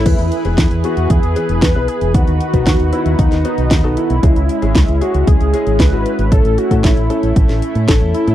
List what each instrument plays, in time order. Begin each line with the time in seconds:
Already playing: analog synth lead E4
0.06 fingered electric bass E2, analog synth pad E3 E4 G#4 B4, grand piano B3 E4 G#4 B4, kick, closed hi-hat, crash
0.19 fingered electric bass E2, closed hi-hat
0.32 closed hi-hat
0.45 fingered electric bass E1, grand piano B3 E4 G#4 B4, closed hi-hat
0.58 fingered electric bass E2, kick, snare, closed hi-hat
0.71 fingered electric bass E2, closed hi-hat
0.84 grand piano B3 E4 G#4 B4, analog synth lead F#4, closed hi-hat
0.97 fingered electric bass E2, closed hi-hat
1.10 fingered electric bass E2, analog synth lead G#4, kick, closed hi-hat
1.23 fingered electric bass E2, closed hi-hat
1.36 grand piano B3 E4 G#4 B4, closed hi-hat
1.49 fingered electric bass E1, closed hi-hat
1.62 fingered electric bass E2, analog synth lead B4, kick, snare, closed hi-hat
1.75 fingered electric bass B1, grand piano B3 E4 G#4 B4
1.88 analog synth lead G#4, closed hi-hat
2.01 fingered electric bass E1, closed hi-hat
2.14 fingered electric bass D#2, analog synth pad D#3 D#4 F#4, grand piano B3 D#4 F#4 B4, analog synth lead F#4, kick, closed hi-hat
2.27 fingered electric bass D#2, closed hi-hat
2.41 closed hi-hat
2.54 fingered electric bass B1, grand piano B3 D#4 F#4 B4, kick, closed hi-hat
2.67 fingered electric bass D#2, analog synth lead F#4, kick, snare, closed hi-hat
2.80 fingered electric bass D#2, closed hi-hat
2.93 grand piano B3 D#4 F#4 B4, analog synth lead E4, closed hi-hat
3.06 fingered electric bass D#2, closed hi-hat
3.19 fingered electric bass D#2, analog synth lead D#4, kick, closed hi-hat
3.32 fingered electric bass D#2, snare, closed hi-hat
3.45 grand piano B3 D#4 F#4 B4, closed hi-hat
3.58 fingered electric bass B1, closed hi-hat
3.71 fingered electric bass D#2, kick, snare, closed hi-hat
3.84 fingered electric bass B1, grand piano B3 D#4 F#4 A4
3.97 analog synth lead E4, closed hi-hat
4.10 fingered electric bass B1, closed hi-hat
4.23 fingered electric bass C#2, analog synth pad G#3 C#4 E4, grand piano G#3 C#4 E4 G#4, kick, closed hi-hat
4.36 fingered electric bass C#2, closed hi-hat
4.49 closed hi-hat
4.62 fingered electric bass G#1, grand piano G#3 C#4 E4 G#4, closed hi-hat
4.75 fingered electric bass C#2, kick, snare, closed hi-hat
4.88 fingered electric bass C#2, closed hi-hat
5.01 grand piano G#3 C#4 E4 G#4, analog synth lead F#4, closed hi-hat
5.14 fingered electric bass C#2, closed hi-hat
5.27 fingered electric bass C#2, analog synth lead G#4, kick, closed hi-hat
5.41 fingered electric bass C#2, closed hi-hat
5.53 grand piano G#3 C#4 E4 G#4, closed hi-hat
5.67 fingered electric bass G#1, closed hi-hat
5.80 fingered electric bass C#2, analog synth lead B4, kick, snare, closed hi-hat
5.93 fingered electric bass G#1, grand piano G#3 C#4 E4 F#4
6.06 closed hi-hat
6.19 fingered electric bass G#1, closed hi-hat
6.32 fingered electric bass A1, analog synth pad A3, grand piano A3 C#4 E4 A4, analog synth lead A4, kick, closed hi-hat
6.45 fingered electric bass A1, closed hi-hat
6.58 analog synth lead F#4, closed hi-hat
6.71 fingered electric bass A2, grand piano A3 C#4 E4 A4, kick, closed hi-hat
6.84 fingered electric bass A1, analog synth lead E4, kick, snare, closed hi-hat
6.97 fingered electric bass A1, closed hi-hat
7.10 grand piano A3 C#4 E4 A4, closed hi-hat
7.23 fingered electric bass A1, closed hi-hat
7.36 fingered electric bass A1, kick, closed hi-hat
7.49 fingered electric bass A1, snare, closed hi-hat
7.62 closed hi-hat
7.75 fingered electric bass A2, closed hi-hat
7.88 fingered electric bass A1, grand piano A3 C#4 E4 A4, kick, snare, closed hi-hat
8.01 fingered electric bass E2
8.14 analog synth lead E4, closed hi-hat
8.27 fingered electric bass A2, grand piano A3 C#4 E4 A4, closed hi-hat